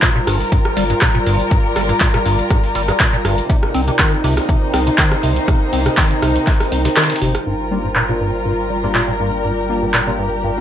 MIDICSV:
0, 0, Header, 1, 7, 480
1, 0, Start_track
1, 0, Key_signature, -2, "minor"
1, 0, Tempo, 495868
1, 1465, Time_signature, 4, 2, 24, 8
1, 10267, End_track
2, 0, Start_track
2, 0, Title_t, "Analog synth pad"
2, 0, Program_c, 0, 89
2, 0, Note_on_c, 0, 65, 81
2, 0, Note_on_c, 0, 70, 71
2, 0, Note_on_c, 0, 72, 64
2, 0, Note_on_c, 0, 79, 80
2, 318, Note_on_c, 0, 74, 76
2, 1087, Note_off_c, 0, 72, 0
2, 3383, Note_on_c, 0, 63, 86
2, 3969, Note_on_c, 0, 72, 79
2, 4259, Note_off_c, 0, 65, 0
2, 4925, Note_off_c, 0, 74, 0
2, 7224, Note_off_c, 0, 63, 0
2, 7224, Note_on_c, 0, 65, 74
2, 7564, Note_on_c, 0, 74, 64
2, 8236, Note_off_c, 0, 72, 0
2, 10267, Note_off_c, 0, 65, 0
2, 10267, Note_off_c, 0, 70, 0
2, 10267, Note_off_c, 0, 74, 0
2, 10267, Note_off_c, 0, 79, 0
2, 10267, End_track
3, 0, Start_track
3, 0, Title_t, "String section"
3, 0, Program_c, 1, 48
3, 0, Note_on_c, 1, 55, 81
3, 0, Note_on_c, 1, 65, 73
3, 0, Note_on_c, 1, 70, 93
3, 3346, Note_off_c, 1, 55, 0
3, 3346, Note_off_c, 1, 65, 0
3, 3346, Note_off_c, 1, 70, 0
3, 3385, Note_on_c, 1, 48, 81
3, 3385, Note_on_c, 1, 58, 71
3, 3385, Note_on_c, 1, 63, 90
3, 7186, Note_off_c, 1, 48, 0
3, 7186, Note_off_c, 1, 58, 0
3, 7187, Note_off_c, 1, 63, 0
3, 7224, Note_on_c, 1, 65, 65
3, 7224, Note_on_c, 1, 70, 82
3, 7225, Note_on_c, 1, 55, 73
3, 9125, Note_off_c, 1, 65, 0
3, 9145, Note_on_c, 1, 67, 69
3, 10267, Note_off_c, 1, 55, 0
3, 10267, Note_off_c, 1, 67, 0
3, 10267, Note_off_c, 1, 70, 0
3, 10267, End_track
4, 0, Start_track
4, 0, Title_t, "Synth stab"
4, 0, Program_c, 2, 62
4, 7464, Note_on_c, 2, 55, 81
4, 7464, Note_on_c, 2, 58, 80
4, 7464, Note_on_c, 2, 62, 78
4, 7464, Note_on_c, 2, 65, 94
4, 7596, Note_off_c, 2, 55, 0
4, 7596, Note_off_c, 2, 58, 0
4, 7596, Note_off_c, 2, 62, 0
4, 7596, Note_off_c, 2, 65, 0
4, 7832, Note_on_c, 2, 55, 75
4, 7832, Note_on_c, 2, 58, 72
4, 7832, Note_on_c, 2, 62, 66
4, 7832, Note_on_c, 2, 65, 83
4, 7950, Note_off_c, 2, 55, 0
4, 7950, Note_off_c, 2, 58, 0
4, 7950, Note_off_c, 2, 62, 0
4, 7950, Note_off_c, 2, 65, 0
4, 8551, Note_on_c, 2, 58, 82
4, 8551, Note_on_c, 2, 65, 99
4, 8552, Note_on_c, 2, 55, 91
4, 8552, Note_on_c, 2, 62, 82
4, 8749, Note_off_c, 2, 55, 0
4, 8749, Note_off_c, 2, 58, 0
4, 8749, Note_off_c, 2, 62, 0
4, 8749, Note_off_c, 2, 65, 0
4, 8904, Note_on_c, 2, 55, 68
4, 8904, Note_on_c, 2, 58, 65
4, 8904, Note_on_c, 2, 62, 66
4, 8904, Note_on_c, 2, 65, 81
4, 9036, Note_off_c, 2, 55, 0
4, 9036, Note_off_c, 2, 58, 0
4, 9036, Note_off_c, 2, 62, 0
4, 9036, Note_off_c, 2, 65, 0
4, 9384, Note_on_c, 2, 55, 92
4, 9384, Note_on_c, 2, 58, 84
4, 9384, Note_on_c, 2, 62, 82
4, 9384, Note_on_c, 2, 65, 95
4, 9516, Note_off_c, 2, 55, 0
4, 9516, Note_off_c, 2, 58, 0
4, 9516, Note_off_c, 2, 62, 0
4, 9516, Note_off_c, 2, 65, 0
4, 9751, Note_on_c, 2, 55, 99
4, 9751, Note_on_c, 2, 58, 85
4, 9751, Note_on_c, 2, 62, 86
4, 9751, Note_on_c, 2, 65, 103
4, 9869, Note_off_c, 2, 58, 0
4, 9869, Note_off_c, 2, 65, 0
4, 9870, Note_off_c, 2, 55, 0
4, 9870, Note_off_c, 2, 62, 0
4, 10231, Note_on_c, 2, 55, 83
4, 10231, Note_on_c, 2, 58, 79
4, 10231, Note_on_c, 2, 62, 78
4, 10231, Note_on_c, 2, 65, 93
4, 10267, Note_off_c, 2, 55, 0
4, 10267, Note_off_c, 2, 58, 0
4, 10267, Note_off_c, 2, 62, 0
4, 10267, Note_off_c, 2, 65, 0
4, 10267, End_track
5, 0, Start_track
5, 0, Title_t, "Acid bass"
5, 0, Program_c, 3, 38
5, 24, Note_on_c, 3, 46, 101
5, 94, Note_off_c, 3, 46, 0
5, 151, Note_on_c, 3, 46, 100
5, 189, Note_off_c, 3, 46, 0
5, 264, Note_on_c, 3, 43, 79
5, 369, Note_off_c, 3, 43, 0
5, 504, Note_on_c, 3, 43, 76
5, 574, Note_off_c, 3, 43, 0
5, 744, Note_on_c, 3, 55, 78
5, 814, Note_off_c, 3, 55, 0
5, 871, Note_on_c, 3, 43, 72
5, 909, Note_off_c, 3, 43, 0
5, 984, Note_on_c, 3, 46, 106
5, 1054, Note_off_c, 3, 46, 0
5, 1111, Note_on_c, 3, 46, 100
5, 1149, Note_off_c, 3, 46, 0
5, 1223, Note_on_c, 3, 43, 80
5, 1329, Note_off_c, 3, 43, 0
5, 1465, Note_on_c, 3, 43, 81
5, 1535, Note_off_c, 3, 43, 0
5, 1704, Note_on_c, 3, 55, 73
5, 1774, Note_off_c, 3, 55, 0
5, 1831, Note_on_c, 3, 43, 77
5, 1869, Note_off_c, 3, 43, 0
5, 1944, Note_on_c, 3, 46, 103
5, 2014, Note_off_c, 3, 46, 0
5, 2071, Note_on_c, 3, 46, 100
5, 2109, Note_off_c, 3, 46, 0
5, 2184, Note_on_c, 3, 43, 80
5, 2289, Note_off_c, 3, 43, 0
5, 2424, Note_on_c, 3, 43, 80
5, 2494, Note_off_c, 3, 43, 0
5, 2664, Note_on_c, 3, 55, 75
5, 2734, Note_off_c, 3, 55, 0
5, 2790, Note_on_c, 3, 43, 72
5, 2828, Note_off_c, 3, 43, 0
5, 2904, Note_on_c, 3, 46, 103
5, 2974, Note_off_c, 3, 46, 0
5, 3030, Note_on_c, 3, 46, 103
5, 3068, Note_off_c, 3, 46, 0
5, 3143, Note_on_c, 3, 43, 77
5, 3249, Note_off_c, 3, 43, 0
5, 3384, Note_on_c, 3, 48, 82
5, 3454, Note_off_c, 3, 48, 0
5, 3624, Note_on_c, 3, 60, 77
5, 3694, Note_off_c, 3, 60, 0
5, 3752, Note_on_c, 3, 48, 77
5, 3789, Note_off_c, 3, 48, 0
5, 3865, Note_on_c, 3, 51, 103
5, 3992, Note_on_c, 3, 50, 101
5, 4007, Note_off_c, 3, 51, 0
5, 4029, Note_off_c, 3, 50, 0
5, 4105, Note_on_c, 3, 48, 76
5, 4210, Note_off_c, 3, 48, 0
5, 4345, Note_on_c, 3, 48, 81
5, 4415, Note_off_c, 3, 48, 0
5, 4585, Note_on_c, 3, 60, 72
5, 4655, Note_off_c, 3, 60, 0
5, 4712, Note_on_c, 3, 48, 72
5, 4749, Note_off_c, 3, 48, 0
5, 4825, Note_on_c, 3, 51, 103
5, 4952, Note_on_c, 3, 50, 106
5, 4967, Note_off_c, 3, 51, 0
5, 4989, Note_off_c, 3, 50, 0
5, 5065, Note_on_c, 3, 48, 76
5, 5170, Note_off_c, 3, 48, 0
5, 5305, Note_on_c, 3, 48, 84
5, 5375, Note_off_c, 3, 48, 0
5, 5545, Note_on_c, 3, 60, 77
5, 5615, Note_off_c, 3, 60, 0
5, 5672, Note_on_c, 3, 48, 80
5, 5709, Note_off_c, 3, 48, 0
5, 5784, Note_on_c, 3, 51, 100
5, 5911, Note_on_c, 3, 50, 101
5, 5925, Note_off_c, 3, 51, 0
5, 5949, Note_off_c, 3, 50, 0
5, 6024, Note_on_c, 3, 48, 78
5, 6129, Note_off_c, 3, 48, 0
5, 6263, Note_on_c, 3, 48, 76
5, 6334, Note_off_c, 3, 48, 0
5, 6504, Note_on_c, 3, 60, 78
5, 6574, Note_off_c, 3, 60, 0
5, 6631, Note_on_c, 3, 48, 72
5, 6669, Note_off_c, 3, 48, 0
5, 6744, Note_on_c, 3, 51, 104
5, 6871, Note_on_c, 3, 50, 107
5, 6886, Note_off_c, 3, 51, 0
5, 6909, Note_off_c, 3, 50, 0
5, 6985, Note_on_c, 3, 48, 80
5, 7090, Note_off_c, 3, 48, 0
5, 7225, Note_on_c, 3, 43, 73
5, 7295, Note_off_c, 3, 43, 0
5, 7465, Note_on_c, 3, 55, 71
5, 7535, Note_off_c, 3, 55, 0
5, 7592, Note_on_c, 3, 43, 76
5, 7629, Note_off_c, 3, 43, 0
5, 7704, Note_on_c, 3, 46, 98
5, 7774, Note_off_c, 3, 46, 0
5, 7832, Note_on_c, 3, 46, 97
5, 7869, Note_off_c, 3, 46, 0
5, 7944, Note_on_c, 3, 43, 73
5, 8049, Note_off_c, 3, 43, 0
5, 8184, Note_on_c, 3, 43, 71
5, 8254, Note_off_c, 3, 43, 0
5, 8424, Note_on_c, 3, 55, 71
5, 8494, Note_off_c, 3, 55, 0
5, 8550, Note_on_c, 3, 43, 71
5, 8588, Note_off_c, 3, 43, 0
5, 8664, Note_on_c, 3, 46, 99
5, 8734, Note_off_c, 3, 46, 0
5, 8791, Note_on_c, 3, 46, 97
5, 8829, Note_off_c, 3, 46, 0
5, 8904, Note_on_c, 3, 43, 74
5, 9009, Note_off_c, 3, 43, 0
5, 9144, Note_on_c, 3, 43, 82
5, 9214, Note_off_c, 3, 43, 0
5, 9384, Note_on_c, 3, 55, 73
5, 9454, Note_off_c, 3, 55, 0
5, 9512, Note_on_c, 3, 43, 76
5, 9549, Note_off_c, 3, 43, 0
5, 9624, Note_on_c, 3, 46, 96
5, 9694, Note_off_c, 3, 46, 0
5, 9750, Note_on_c, 3, 46, 92
5, 9788, Note_off_c, 3, 46, 0
5, 9864, Note_on_c, 3, 43, 74
5, 9969, Note_off_c, 3, 43, 0
5, 10103, Note_on_c, 3, 43, 78
5, 10174, Note_off_c, 3, 43, 0
5, 10267, End_track
6, 0, Start_track
6, 0, Title_t, "Sub bass"
6, 0, Program_c, 4, 38
6, 264, Note_on_c, 4, 31, 84
6, 417, Note_off_c, 4, 31, 0
6, 745, Note_on_c, 4, 31, 96
6, 897, Note_off_c, 4, 31, 0
6, 1224, Note_on_c, 4, 31, 83
6, 1377, Note_off_c, 4, 31, 0
6, 1704, Note_on_c, 4, 31, 97
6, 1857, Note_off_c, 4, 31, 0
6, 2185, Note_on_c, 4, 31, 91
6, 2337, Note_off_c, 4, 31, 0
6, 2664, Note_on_c, 4, 31, 99
6, 2817, Note_off_c, 4, 31, 0
6, 3145, Note_on_c, 4, 31, 80
6, 3297, Note_off_c, 4, 31, 0
6, 3625, Note_on_c, 4, 36, 93
6, 3777, Note_off_c, 4, 36, 0
6, 4104, Note_on_c, 4, 36, 91
6, 4257, Note_off_c, 4, 36, 0
6, 4584, Note_on_c, 4, 36, 106
6, 4737, Note_off_c, 4, 36, 0
6, 5065, Note_on_c, 4, 36, 84
6, 5217, Note_off_c, 4, 36, 0
6, 5545, Note_on_c, 4, 36, 96
6, 5697, Note_off_c, 4, 36, 0
6, 6025, Note_on_c, 4, 36, 91
6, 6177, Note_off_c, 4, 36, 0
6, 6505, Note_on_c, 4, 36, 106
6, 6657, Note_off_c, 4, 36, 0
6, 6985, Note_on_c, 4, 31, 85
6, 7137, Note_off_c, 4, 31, 0
6, 7225, Note_on_c, 4, 31, 84
6, 10267, Note_off_c, 4, 31, 0
6, 10267, End_track
7, 0, Start_track
7, 0, Title_t, "Drums"
7, 20, Note_on_c, 9, 39, 109
7, 24, Note_on_c, 9, 36, 116
7, 24, Note_on_c, 9, 38, 111
7, 24, Note_on_c, 9, 42, 50
7, 116, Note_off_c, 9, 39, 0
7, 121, Note_off_c, 9, 36, 0
7, 121, Note_off_c, 9, 38, 0
7, 121, Note_off_c, 9, 42, 0
7, 264, Note_on_c, 9, 37, 62
7, 264, Note_on_c, 9, 46, 76
7, 361, Note_off_c, 9, 37, 0
7, 361, Note_off_c, 9, 46, 0
7, 391, Note_on_c, 9, 38, 51
7, 391, Note_on_c, 9, 42, 62
7, 488, Note_off_c, 9, 38, 0
7, 488, Note_off_c, 9, 42, 0
7, 504, Note_on_c, 9, 36, 113
7, 504, Note_on_c, 9, 42, 81
7, 601, Note_off_c, 9, 36, 0
7, 601, Note_off_c, 9, 42, 0
7, 631, Note_on_c, 9, 37, 60
7, 728, Note_off_c, 9, 37, 0
7, 744, Note_on_c, 9, 38, 46
7, 744, Note_on_c, 9, 42, 69
7, 744, Note_on_c, 9, 46, 107
7, 840, Note_off_c, 9, 46, 0
7, 841, Note_off_c, 9, 38, 0
7, 841, Note_off_c, 9, 42, 0
7, 871, Note_on_c, 9, 42, 42
7, 968, Note_off_c, 9, 42, 0
7, 978, Note_on_c, 9, 39, 110
7, 983, Note_on_c, 9, 37, 60
7, 983, Note_on_c, 9, 42, 48
7, 984, Note_off_c, 9, 42, 0
7, 984, Note_on_c, 9, 36, 115
7, 984, Note_on_c, 9, 38, 111
7, 984, Note_on_c, 9, 42, 83
7, 1075, Note_off_c, 9, 39, 0
7, 1080, Note_off_c, 9, 37, 0
7, 1081, Note_off_c, 9, 36, 0
7, 1081, Note_off_c, 9, 38, 0
7, 1081, Note_off_c, 9, 42, 0
7, 1223, Note_on_c, 9, 46, 106
7, 1224, Note_on_c, 9, 42, 62
7, 1320, Note_off_c, 9, 46, 0
7, 1321, Note_off_c, 9, 42, 0
7, 1351, Note_on_c, 9, 42, 62
7, 1448, Note_off_c, 9, 42, 0
7, 1463, Note_on_c, 9, 42, 51
7, 1464, Note_off_c, 9, 42, 0
7, 1464, Note_on_c, 9, 36, 118
7, 1464, Note_on_c, 9, 42, 85
7, 1561, Note_off_c, 9, 36, 0
7, 1561, Note_off_c, 9, 42, 0
7, 1703, Note_on_c, 9, 37, 59
7, 1703, Note_on_c, 9, 46, 96
7, 1704, Note_on_c, 9, 42, 65
7, 1800, Note_off_c, 9, 37, 0
7, 1800, Note_off_c, 9, 46, 0
7, 1801, Note_off_c, 9, 42, 0
7, 1831, Note_on_c, 9, 42, 62
7, 1927, Note_off_c, 9, 42, 0
7, 1939, Note_on_c, 9, 39, 110
7, 1943, Note_on_c, 9, 42, 51
7, 1944, Note_off_c, 9, 42, 0
7, 1944, Note_on_c, 9, 36, 118
7, 1944, Note_on_c, 9, 38, 107
7, 1944, Note_on_c, 9, 42, 87
7, 2035, Note_off_c, 9, 39, 0
7, 2041, Note_off_c, 9, 36, 0
7, 2041, Note_off_c, 9, 38, 0
7, 2041, Note_off_c, 9, 42, 0
7, 2072, Note_on_c, 9, 37, 62
7, 2072, Note_on_c, 9, 42, 43
7, 2168, Note_off_c, 9, 37, 0
7, 2168, Note_off_c, 9, 42, 0
7, 2184, Note_on_c, 9, 42, 67
7, 2184, Note_on_c, 9, 46, 96
7, 2281, Note_off_c, 9, 42, 0
7, 2281, Note_off_c, 9, 46, 0
7, 2311, Note_on_c, 9, 42, 62
7, 2408, Note_off_c, 9, 42, 0
7, 2424, Note_on_c, 9, 36, 116
7, 2424, Note_on_c, 9, 37, 61
7, 2424, Note_on_c, 9, 42, 51
7, 2521, Note_off_c, 9, 36, 0
7, 2521, Note_off_c, 9, 37, 0
7, 2521, Note_off_c, 9, 42, 0
7, 2551, Note_on_c, 9, 46, 58
7, 2648, Note_off_c, 9, 46, 0
7, 2664, Note_on_c, 9, 42, 69
7, 2664, Note_on_c, 9, 46, 99
7, 2761, Note_off_c, 9, 42, 0
7, 2761, Note_off_c, 9, 46, 0
7, 2792, Note_on_c, 9, 37, 61
7, 2792, Note_on_c, 9, 42, 61
7, 2888, Note_off_c, 9, 37, 0
7, 2888, Note_off_c, 9, 42, 0
7, 2900, Note_on_c, 9, 39, 110
7, 2904, Note_on_c, 9, 36, 106
7, 2905, Note_on_c, 9, 38, 115
7, 2905, Note_on_c, 9, 42, 51
7, 2997, Note_off_c, 9, 39, 0
7, 3001, Note_off_c, 9, 36, 0
7, 3002, Note_off_c, 9, 38, 0
7, 3002, Note_off_c, 9, 42, 0
7, 3145, Note_on_c, 9, 37, 60
7, 3145, Note_on_c, 9, 42, 62
7, 3145, Note_on_c, 9, 46, 96
7, 3242, Note_off_c, 9, 37, 0
7, 3242, Note_off_c, 9, 42, 0
7, 3242, Note_off_c, 9, 46, 0
7, 3272, Note_on_c, 9, 42, 65
7, 3369, Note_off_c, 9, 42, 0
7, 3384, Note_on_c, 9, 36, 118
7, 3385, Note_on_c, 9, 42, 52
7, 3481, Note_off_c, 9, 36, 0
7, 3482, Note_off_c, 9, 42, 0
7, 3513, Note_on_c, 9, 37, 61
7, 3609, Note_off_c, 9, 37, 0
7, 3625, Note_on_c, 9, 42, 67
7, 3625, Note_on_c, 9, 46, 95
7, 3721, Note_off_c, 9, 42, 0
7, 3722, Note_off_c, 9, 46, 0
7, 3752, Note_on_c, 9, 42, 66
7, 3849, Note_off_c, 9, 42, 0
7, 3860, Note_on_c, 9, 39, 116
7, 3864, Note_on_c, 9, 38, 111
7, 3864, Note_on_c, 9, 42, 86
7, 3865, Note_off_c, 9, 42, 0
7, 3865, Note_on_c, 9, 36, 111
7, 3865, Note_on_c, 9, 37, 59
7, 3865, Note_on_c, 9, 42, 55
7, 3957, Note_off_c, 9, 39, 0
7, 3961, Note_off_c, 9, 38, 0
7, 3962, Note_off_c, 9, 36, 0
7, 3962, Note_off_c, 9, 37, 0
7, 3962, Note_off_c, 9, 42, 0
7, 4104, Note_on_c, 9, 46, 83
7, 4105, Note_off_c, 9, 46, 0
7, 4105, Note_on_c, 9, 46, 99
7, 4202, Note_off_c, 9, 46, 0
7, 4231, Note_on_c, 9, 38, 50
7, 4232, Note_on_c, 9, 37, 59
7, 4232, Note_on_c, 9, 42, 66
7, 4328, Note_off_c, 9, 38, 0
7, 4329, Note_off_c, 9, 37, 0
7, 4329, Note_off_c, 9, 42, 0
7, 4344, Note_on_c, 9, 42, 85
7, 4345, Note_off_c, 9, 42, 0
7, 4345, Note_on_c, 9, 36, 109
7, 4345, Note_on_c, 9, 42, 55
7, 4442, Note_off_c, 9, 36, 0
7, 4442, Note_off_c, 9, 42, 0
7, 4585, Note_on_c, 9, 37, 63
7, 4585, Note_on_c, 9, 38, 50
7, 4585, Note_on_c, 9, 42, 69
7, 4585, Note_on_c, 9, 46, 102
7, 4681, Note_off_c, 9, 38, 0
7, 4681, Note_off_c, 9, 42, 0
7, 4682, Note_off_c, 9, 37, 0
7, 4682, Note_off_c, 9, 46, 0
7, 4712, Note_on_c, 9, 42, 43
7, 4809, Note_off_c, 9, 42, 0
7, 4820, Note_on_c, 9, 39, 111
7, 4825, Note_on_c, 9, 36, 112
7, 4825, Note_on_c, 9, 38, 118
7, 4825, Note_on_c, 9, 42, 52
7, 4917, Note_off_c, 9, 39, 0
7, 4922, Note_off_c, 9, 36, 0
7, 4922, Note_off_c, 9, 38, 0
7, 4922, Note_off_c, 9, 42, 0
7, 4952, Note_on_c, 9, 37, 59
7, 5049, Note_off_c, 9, 37, 0
7, 5065, Note_on_c, 9, 42, 62
7, 5065, Note_on_c, 9, 46, 99
7, 5162, Note_off_c, 9, 42, 0
7, 5162, Note_off_c, 9, 46, 0
7, 5192, Note_on_c, 9, 42, 64
7, 5289, Note_off_c, 9, 42, 0
7, 5305, Note_on_c, 9, 36, 120
7, 5305, Note_on_c, 9, 37, 58
7, 5305, Note_on_c, 9, 42, 81
7, 5401, Note_off_c, 9, 37, 0
7, 5402, Note_off_c, 9, 36, 0
7, 5402, Note_off_c, 9, 42, 0
7, 5545, Note_on_c, 9, 42, 70
7, 5545, Note_on_c, 9, 46, 100
7, 5642, Note_off_c, 9, 42, 0
7, 5642, Note_off_c, 9, 46, 0
7, 5672, Note_on_c, 9, 37, 57
7, 5672, Note_on_c, 9, 42, 67
7, 5769, Note_off_c, 9, 37, 0
7, 5769, Note_off_c, 9, 42, 0
7, 5780, Note_on_c, 9, 39, 119
7, 5785, Note_on_c, 9, 36, 113
7, 5785, Note_on_c, 9, 38, 113
7, 5785, Note_on_c, 9, 42, 56
7, 5877, Note_off_c, 9, 39, 0
7, 5881, Note_off_c, 9, 38, 0
7, 5882, Note_off_c, 9, 36, 0
7, 5882, Note_off_c, 9, 42, 0
7, 5913, Note_on_c, 9, 42, 43
7, 6010, Note_off_c, 9, 42, 0
7, 6025, Note_on_c, 9, 37, 60
7, 6025, Note_on_c, 9, 42, 70
7, 6025, Note_on_c, 9, 46, 106
7, 6121, Note_off_c, 9, 37, 0
7, 6121, Note_off_c, 9, 46, 0
7, 6122, Note_off_c, 9, 42, 0
7, 6153, Note_on_c, 9, 42, 71
7, 6250, Note_off_c, 9, 42, 0
7, 6261, Note_on_c, 9, 39, 36
7, 6265, Note_on_c, 9, 36, 112
7, 6265, Note_on_c, 9, 38, 99
7, 6265, Note_on_c, 9, 42, 78
7, 6266, Note_off_c, 9, 42, 0
7, 6266, Note_on_c, 9, 42, 52
7, 6358, Note_off_c, 9, 39, 0
7, 6362, Note_off_c, 9, 36, 0
7, 6362, Note_off_c, 9, 38, 0
7, 6363, Note_off_c, 9, 42, 0
7, 6393, Note_on_c, 9, 37, 59
7, 6393, Note_on_c, 9, 46, 57
7, 6489, Note_off_c, 9, 37, 0
7, 6489, Note_off_c, 9, 46, 0
7, 6505, Note_on_c, 9, 42, 61
7, 6505, Note_on_c, 9, 46, 109
7, 6602, Note_off_c, 9, 42, 0
7, 6602, Note_off_c, 9, 46, 0
7, 6632, Note_on_c, 9, 38, 104
7, 6632, Note_on_c, 9, 42, 80
7, 6729, Note_off_c, 9, 38, 0
7, 6729, Note_off_c, 9, 42, 0
7, 6741, Note_on_c, 9, 39, 120
7, 6745, Note_on_c, 9, 38, 90
7, 6745, Note_on_c, 9, 42, 67
7, 6746, Note_off_c, 9, 42, 0
7, 6746, Note_on_c, 9, 37, 60
7, 6746, Note_on_c, 9, 42, 58
7, 6808, Note_off_c, 9, 38, 0
7, 6808, Note_off_c, 9, 42, 0
7, 6808, Note_on_c, 9, 38, 86
7, 6808, Note_on_c, 9, 42, 68
7, 6837, Note_off_c, 9, 39, 0
7, 6842, Note_off_c, 9, 37, 0
7, 6872, Note_off_c, 9, 38, 0
7, 6872, Note_off_c, 9, 42, 0
7, 6872, Note_on_c, 9, 38, 92
7, 6872, Note_on_c, 9, 42, 70
7, 6928, Note_off_c, 9, 38, 0
7, 6928, Note_off_c, 9, 42, 0
7, 6928, Note_on_c, 9, 38, 91
7, 6928, Note_on_c, 9, 42, 72
7, 6985, Note_off_c, 9, 42, 0
7, 6985, Note_on_c, 9, 42, 64
7, 6985, Note_on_c, 9, 46, 98
7, 7025, Note_off_c, 9, 38, 0
7, 7081, Note_off_c, 9, 42, 0
7, 7082, Note_off_c, 9, 46, 0
7, 7112, Note_on_c, 9, 37, 55
7, 7112, Note_on_c, 9, 42, 70
7, 7209, Note_off_c, 9, 37, 0
7, 7209, Note_off_c, 9, 42, 0
7, 7700, Note_on_c, 9, 39, 114
7, 7797, Note_off_c, 9, 39, 0
7, 8660, Note_on_c, 9, 39, 108
7, 8757, Note_off_c, 9, 39, 0
7, 9620, Note_on_c, 9, 39, 115
7, 9717, Note_off_c, 9, 39, 0
7, 10267, End_track
0, 0, End_of_file